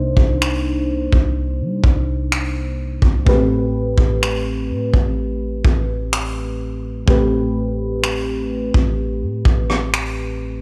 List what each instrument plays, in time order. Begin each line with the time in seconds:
Already playing: 808-style bass C2, fm electric piano C3 A#3 D4 D#4 C5
0.17 808-style bass C2, kick
0.42 finger snap
1.13 808-style bass C2, kick
1.61 808-style bass G3
1.84 808-style bass C2, kick
2.32 finger snap
3.02 808-style bass C2, kick
3.25 808-style bass A1, fm electric piano A2 A3 B3 G4 B4, kick
3.33 fm electric piano C4
3.98 808-style bass A1, kick
4.23 finger snap
4.70 808-style bass A2
4.94 808-style bass A1, kick
5.65 808-style bass A1, kick
6.13 finger snap
7.06 808-style bass A1, fm electric piano A2 A3 C4 G4 B4, kick
8.04 finger snap
8.74 808-style bass A1, kick
9.22 808-style bass A2
9.45 808-style bass A1, kick
9.70 cross-stick
9.94 finger snap